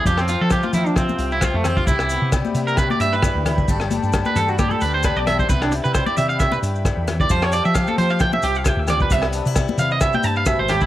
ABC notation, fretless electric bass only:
X:1
M:4/4
L:1/16
Q:"Swing 16ths" 1/4=133
K:C
V:1 name="Fretless electric bass" clef=bass
F,,3 F,2 z F,4 C,,3 F,,3 | C,,3 C,2 z C,4 G,,3 D,,3 | G,,,3 G,,2 z G,,4 D,,3 B,,,3 | C,,3 C,2 z C,4 G,,3 E,,3 |
F,,3 F,2 z F,4 C,,3 D,,3 | C,,3 C,2 z C,4 G,,3 _A,,,3 |]